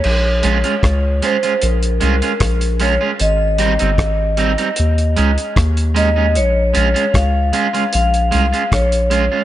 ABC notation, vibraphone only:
X:1
M:4/4
L:1/8
Q:1/4=76
K:Bbdor
V:1 name="Vibraphone"
d3 c B3 d | e6 z e | d2 f2 f2 d2 |]